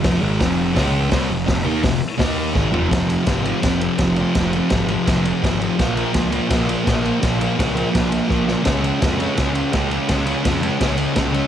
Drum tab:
RD |--------|--------|xxxxxxxx|xxxxxxxx|
HH |o-o-o-o-|o-o-o---|--------|--------|
SD |o-o-o-o-|o-o-o-o-|o-o-o-o-|o-o-o-o-|
FT |--------|-------o|--------|--------|
BD |o-o-o-o-|o-o-o-o-|o-o-o-o-|o-o-o-o-|

RD |xxxxxxxx|xxxxxx--|xxxxxxxx|xxxxxxxx|
HH |--------|--------|--------|--------|
SD |o-o-o-o-|o-o-o-oo|o-o-o-o-|o-o-o-o-|
FT |--------|--------|--------|--------|
BD |o-o-o-o-|o-o-o-o-|o-o-o-o-|o-o-o-o-|